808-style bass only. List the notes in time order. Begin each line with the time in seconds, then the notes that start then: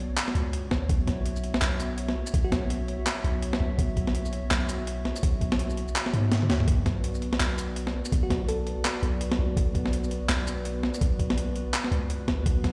0.35 C#2
0.71 D2
0.89 B1
1.62 B1
2.34 B1
3.24 B1
3.60 B1
3.78 B1
4.51 B1
5.23 B1
6.14 G#2
6.50 D2
6.68 B1
7.40 B1
8.12 B1
9.03 B1
9.39 B1
9.57 B1
10.29 B1
11.01 B1
11.91 C#2
12.28 D2
12.46 B1